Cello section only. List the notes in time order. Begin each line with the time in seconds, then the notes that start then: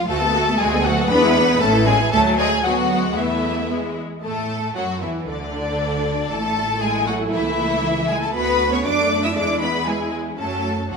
0.08 A3
0.58 G#3
0.84 F#3
1.10 B3
1.61 A3
1.87 G#3
2.12 A3
2.38 G#3
2.65 F#3
3.17 E3
4.23 A3
4.75 F#3
5.01 E3
5.27 D3
6.29 A3
6.81 G#3
7.07 F#3
7.32 E3
8.09 G#3
8.22 A3
8.34 B3
8.72 C#4
8.85 D4
9.23 E4
9.35 D4
9.60 B3
9.86 G#3
10.38 A3
10.90 F#3